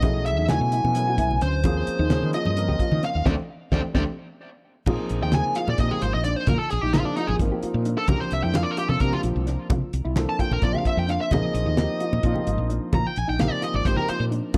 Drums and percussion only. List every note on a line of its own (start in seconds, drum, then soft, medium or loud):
0.02 kick loud
0.02 closed hi-hat medium
0.02 high conga medium
0.02 low conga soft
0.26 closed hi-hat medium
0.49 snare loud
0.49 closed hi-hat medium
0.49 low conga medium
0.72 closed hi-hat medium
0.85 high conga medium
0.95 closed hi-hat medium
0.95 low conga soft
1.18 kick medium
1.18 closed hi-hat medium
1.31 low conga medium
1.41 closed hi-hat medium
1.64 kick loud
1.64 closed hi-hat medium
1.64 high conga medium
1.64 low conga soft
1.87 closed hi-hat medium
2.10 snare loud
2.10 closed hi-hat medium
2.10 low conga medium
2.33 closed hi-hat medium
2.45 high conga medium
2.57 closed hi-hat medium
2.57 low conga soft
2.79 kick medium
2.79 closed hi-hat medium
2.92 low conga medium
3.03 closed hi-hat soft
3.26 kick medium
3.26 snare medium
3.26 high conga loud
3.72 kick medium
3.72 snare medium
3.72 high conga loud
3.95 kick medium
3.95 snare medium
3.95 high conga medium
4.86 kick loud
4.86 crash medium
4.86 high conga medium
4.86 low conga medium
5.09 closed hi-hat medium
5.32 snare medium
5.32 closed hi-hat medium
5.32 low conga medium
5.55 closed hi-hat medium
5.68 high conga medium
5.78 kick medium
5.78 snare soft
5.78 closed hi-hat medium
5.91 low conga medium
6.02 closed hi-hat medium
6.24 snare soft
6.24 closed hi-hat soft
6.47 kick loud
6.47 closed hi-hat medium
6.47 high conga medium
6.47 low conga medium
6.70 closed hi-hat soft
6.93 snare medium
6.93 closed hi-hat medium
6.93 low conga medium
7.17 closed hi-hat soft
7.28 high conga medium
7.39 kick medium
7.39 closed hi-hat medium
7.63 closed hi-hat medium
7.75 low conga soft
7.85 closed hi-hat soft
8.08 kick loud
8.08 closed hi-hat medium
8.08 high conga loud
8.08 low conga medium
8.31 closed hi-hat medium
8.54 snare loud
8.54 closed hi-hat medium
8.54 low conga loud
8.77 closed hi-hat medium
8.89 high conga medium
9.00 kick medium
9.00 snare soft
9.00 closed hi-hat medium
9.13 low conga medium
9.23 closed hi-hat medium
9.37 low conga soft
9.47 snare soft
9.47 closed hi-hat medium
9.70 kick loud
9.70 closed hi-hat medium
9.70 high conga medium
9.70 low conga medium
9.93 closed hi-hat medium
10.16 snare loud
10.16 closed hi-hat medium
10.16 low conga medium
10.39 kick medium
10.39 closed hi-hat medium
10.52 high conga medium
10.52 low conga soft
10.62 kick loud
10.62 closed hi-hat medium
10.75 low conga medium
10.85 kick medium
10.85 closed hi-hat medium
11.09 closed hi-hat soft
11.09 low conga soft
11.21 low conga soft
11.31 kick medium
11.31 closed hi-hat medium
11.31 high conga medium
11.31 low conga medium
11.55 closed hi-hat medium
11.77 snare loud
11.77 closed hi-hat medium
11.77 low conga medium
12.00 closed hi-hat medium
12.13 high conga medium
12.23 kick medium
12.23 closed hi-hat medium
12.36 low conga medium
12.47 closed hi-hat medium
12.59 low conga soft
12.70 closed hi-hat soft
12.93 kick loud
12.93 closed hi-hat medium
12.93 high conga loud
12.93 low conga medium
13.16 closed hi-hat medium
13.39 snare loud
13.39 closed hi-hat medium
13.39 low conga medium
13.62 snare soft
13.62 closed hi-hat medium
13.74 high conga medium
13.85 kick medium
13.85 closed hi-hat medium
13.97 low conga medium
14.08 closed hi-hat medium
14.32 closed hi-hat soft
14.54 kick loud
14.54 high conga medium
14.54 low conga medium